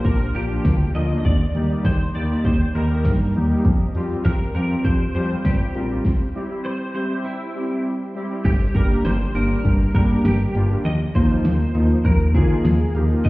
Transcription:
Already playing: F3 A#3 D4 G4
0.05 A#1 A#4, kick, closed hi-hat
0.35 A#1 F3 A#3 D4 F4 G4, closed hi-hat
0.50 F3 A#3 D4 F4, closed hi-hat
0.65 D2, kick, snare, closed hi-hat
0.95 D2 F3 A#3 D4 F4 D#5, closed hi-hat
1.10 F3 A#3 D4 F4, closed hi-hat
1.18 D#5
1.25 D#2 D5, kick, closed hi-hat
1.55 D#2 G3 A#3 D#4 G4, closed hi-hat
1.70 G3 A#3 D#4 G4, closed hi-hat
1.85 D#2 C5, kick, snare, closed hi-hat
2.15 D#2 G3 A#3 D#4 G4 D5, closed hi-hat
2.30 G3 A#3 D#4 G4, closed hi-hat
2.45 D#2 C5, kick, closed hi-hat
2.75 D#2 G3 A#3 D#4 A#4, closed hi-hat
2.90 G3 A#3 D#4 G4, closed hi-hat
3.05 G2, kick, snare, closed hi-hat
3.35 D#2 G3 A#3 D#4 G4, closed hi-hat
3.50 G3 A#3 D#4 G4, closed hi-hat
3.65 F2, kick, closed hi-hat
3.95 F2 G3 C4 F4 G4, closed hi-hat
4.10 G3 C4 F4 G4, closed hi-hat
4.25 F2 A#4, kick, snare, closed hi-hat
4.55 F2 G3 C4 F4 G4 A#4, closed hi-hat
4.70 G3 C4 F4 G4, closed hi-hat
4.85 F2 C5, kick, closed hi-hat
5.15 F2 G3 C4 F4 G4 C5, closed hi-hat
5.30 G3 C4 F4 G4, closed hi-hat
5.45 G2 G4, kick, snare, closed hi-hat
5.75 A#1 G3 C4 F4 A#4, closed hi-hat
5.90 G3 C4 F4 G4, closed hi-hat
6.05 kick, snare
6.35 G3 C4 E4 G4
6.50 G3 C4 E4 G4
6.65 C5
6.95 G3 C4 E4 G4 C5
7.10 G3 C4 E4 G4
7.25 E4
7.55 G3 C4 E4 G4
7.70 G3 C4 E4 G4
8.15 G3 C4 E4 G4
8.30 G3 C4 E4 G4
8.45 G1 G3 G4, kick, closed hi-hat, crash
8.60 closed hi-hat
8.75 G1 G3 A#3 D4 G4 A#4, kick, closed hi-hat
8.90 G3 A#3 D4 G4, closed hi-hat
9.05 G1 G3 C5, snare, closed hi-hat
9.20 closed hi-hat
9.35 G1 G3 A#3 D4 G4 A#4, closed hi-hat
9.50 closed hi-hat
9.65 G1 G3, kick, closed hi-hat
9.80 closed hi-hat
9.95 G2 G3 A#3 D4 G4 A#4, kick, closed hi-hat
10.10 G3 A#3 D4 G4, closed hi-hat
10.25 G1 G3 G4, snare, closed hi-hat
10.40 closed hi-hat
10.55 G1 G3 A#3 D4 F4 G5, closed hi-hat
10.70 G3 A#3 D4 G4, closed hi-hat
10.85 D#2 F3 D#5, closed hi-hat
11.00 closed hi-hat
11.15 D#2 F3 A#3 D#4 F4 C5, kick, closed hi-hat
11.30 F3 A#3 D#4 F4, closed hi-hat
11.45 D#2 F3, snare, closed hi-hat
11.60 closed hi-hat
11.75 D#2 F3 A#3 D#4 F4, closed hi-hat
11.90 closed hi-hat
12.05 D#2 F3 A#4, kick, closed hi-hat
12.20 closed hi-hat
12.35 D#3 F3 A#3 D#4 F4 G#4, kick, closed hi-hat
12.50 F3 A#3 D#4 F4, closed hi-hat
12.65 D#2 F3, snare, closed hi-hat
12.80 closed hi-hat
12.95 D#2 F3 A#3 D#4 G4 F5, closed hi-hat
13.10 F3 A#3 D#4 F4, closed hi-hat
13.25 C2 D#3 G3 C4 D#4 D#5, kick, closed hi-hat

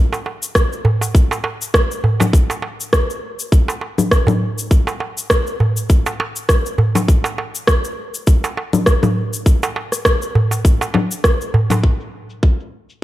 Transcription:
0.13 darbuka tek, shaker
0.26 darbuka ka
0.43 shaker
0.55 kick, cross-stick, shaker
0.73 shaker
0.85 darbuka dum
1.01 darbuka tek, shaker
1.15 kick, shaker
1.31 darbuka tek, shaker
1.44 darbuka ka, darbuka tek
1.62 shaker
1.74 kick, cross-stick, shaker
1.91 shaker
2.04 darbuka dum
2.20 darbuka ka, darbuka tek, low conga, shaker
2.33 kick, shaker
2.50 darbuka tek, shaker
2.62 darbuka ka
2.81 shaker
2.93 kick, cross-stick, shaker
3.10 shaker
3.39 shaker
3.52 kick, shaker
3.68 darbuka tek, shaker
3.81 darbuka ka
3.98 low conga, shaker
4.11 kick, cross-stick, shaker
4.27 darbuka dum, low conga, shaker
4.58 shaker
4.71 kick, shaker
4.87 darbuka tek, shaker
5.00 darbuka ka
5.18 shaker
5.30 kick, cross-stick, shaker
5.47 shaker
5.60 darbuka dum
5.77 shaker
5.90 kick, shaker
6.06 darbuka tek, shaker
6.20 darbuka ka, darbuka tek
6.36 shaker
6.49 kick, cross-stick, shaker
6.66 shaker
6.78 darbuka dum
6.95 darbuka ka, darbuka tek, low conga, shaker
7.08 kick, shaker
7.24 darbuka tek, shaker
7.38 darbuka ka
7.55 shaker
7.67 kick, cross-stick, shaker
7.84 shaker
8.14 shaker
8.27 kick, shaker
8.44 darbuka tek, shaker
8.57 darbuka ka
8.73 low conga, shaker
8.86 kick, cross-stick, shaker
9.03 low conga, darbuka dum, shaker
9.33 shaker
9.46 kick, shaker
9.63 darbuka tek, shaker
9.76 darbuka ka
9.92 cross-stick, shaker
10.05 kick, cross-stick, shaker
10.22 shaker
10.35 darbuka dum
10.51 darbuka tek, shaker
10.65 kick, shaker
10.81 darbuka tek, shaker
10.94 darbuka ka, darbuka tek, low conga
11.11 shaker
11.24 kick, cross-stick, shaker
11.41 shaker
11.54 darbuka dum
11.70 darbuka ka, darbuka tek, darbuka dum, low conga, shaker
11.84 kick
12.00 shaker
12.30 shaker
12.43 kick
12.60 shaker
12.90 shaker

